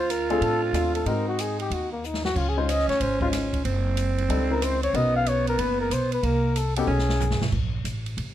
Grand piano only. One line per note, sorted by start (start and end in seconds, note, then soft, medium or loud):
0.30 0.72 A3 medium
0.30 0.72 C4 medium
0.30 0.72 D4 medium
0.30 0.72 F4 medium
0.30 0.72 A4 medium
0.74 1.06 A3 medium
0.74 1.05 C4 medium
0.74 1.06 D4 medium
0.74 1.07 F4 medium
0.74 1.07 A4 medium
1.06 1.96 G#3 medium
1.06 1.96 C4 medium
1.06 1.97 D#4 medium
1.06 1.97 F#4 medium
1.06 1.97 A#4 medium
2.57 2.67 G#3 medium
2.57 2.67 C#4 medium
2.57 2.67 D#4 medium
2.57 2.67 F4 medium
2.57 2.68 C5 medium
3.22 3.63 G#3 medium
3.22 3.63 C#4 medium
3.22 3.63 D#4 medium
3.22 3.63 F4 medium
3.22 3.63 C5 medium
4.30 4.48 G3 medium
4.30 4.48 C4 soft
4.30 4.48 D4 medium
4.30 4.48 D#4 medium
4.30 4.48 A4 medium
4.50 4.78 G#3 medium
4.50 4.79 C#4 medium
4.50 4.79 D#4 medium
4.50 4.79 E4 soft
4.50 4.79 A#4 medium
4.94 5.84 B3 medium
4.94 5.84 C#4 medium
4.94 5.84 D#4 medium
4.94 5.84 F#4 medium
4.94 5.84 A#4 medium
6.77 6.87 B3 medium
6.77 6.87 C#4 medium
6.77 6.87 D#4 medium
6.77 6.87 F#4 medium
6.77 6.87 A4 medium